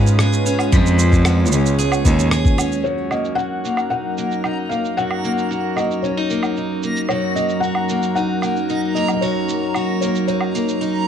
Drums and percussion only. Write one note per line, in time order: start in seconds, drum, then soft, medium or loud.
0.06 shaker soft
0.19 cross-stick loud
0.19 shaker soft
0.33 shaker soft
0.46 shaker medium
0.59 low woodblock medium
0.59 shaker soft
0.72 kick loud
0.72 shaker soft
0.86 shaker soft
0.99 shaker medium
1.12 kick medium
1.12 shaker soft
1.25 cross-stick medium
1.25 low woodblock medium
1.25 shaker soft
1.46 shaker soft
1.52 shaker medium
1.66 shaker soft
1.79 shaker soft
1.92 low woodblock medium
1.92 shaker soft
2.05 kick medium
2.05 shaker medium
2.19 shaker soft
2.31 cross-stick loud
2.31 shaker soft
2.45 kick loud
2.45 shaker soft
2.58 low woodblock medium
2.58 shaker medium
2.72 shaker soft
2.85 shaker soft
3.11 low woodblock medium
3.11 shaker medium
3.25 shaker soft
3.38 shaker soft
3.65 shaker medium
3.77 low woodblock medium
3.77 shaker soft
3.91 shaker soft
4.18 shaker medium
4.31 shaker soft
4.44 low woodblock medium
4.44 shaker soft
4.71 shaker medium
4.85 shaker soft
4.98 shaker soft
5.11 low woodblock medium
5.24 shaker medium
5.38 shaker soft
5.51 shaker soft
5.77 low woodblock medium
5.77 shaker medium
5.91 shaker soft
6.04 shaker soft
6.30 shaker medium
6.43 low woodblock medium
6.43 shaker soft
6.57 shaker soft
6.83 shaker medium
6.96 shaker soft
7.09 low woodblock medium
7.09 shaker soft
7.36 shaker medium
7.49 shaker soft
7.63 shaker soft
7.75 low woodblock medium
7.89 shaker medium
8.02 shaker soft
8.16 shaker soft
8.42 low woodblock medium
8.42 shaker medium
8.56 shaker soft
8.69 shaker soft
8.96 shaker medium
9.08 low woodblock medium
9.08 shaker soft
9.22 shaker soft
9.49 shaker medium
9.75 low woodblock medium
9.75 shaker soft
10.02 shaker medium
10.15 shaker soft
10.28 shaker soft
10.41 low woodblock medium
10.55 shaker medium
10.68 shaker soft
10.82 shaker soft